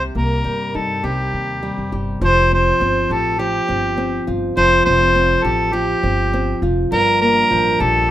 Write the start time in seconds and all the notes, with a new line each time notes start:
Already playing: C2 C3 A#3 D#4 G4
0.15 C2 A#3 A#4
0.44 G1 G3
0.74 G2 D#4 A4
1.04 C2 C3 G4
1.33 D#2
1.62 G3
1.78 F2
1.92 G1 G4
2.21 F1 F3 C5
2.52 C4 C5
2.80 G1 C4
3.10 A1 G4 A4
3.39 F3 G4
3.68 G1 C4
3.98 C4
4.27 G1 F4
4.57 F1 F3 C5
4.86 F1 C4 C5
5.15 C4
5.43 A1 G4 A4
5.73 F3 G4
6.03 G1 C4
6.33 C4
6.62 F1 F4
6.92 G1 G2 A#4
7.21 A#3 A#4
7.50 A1 F3
7.80 A#1 G4 A4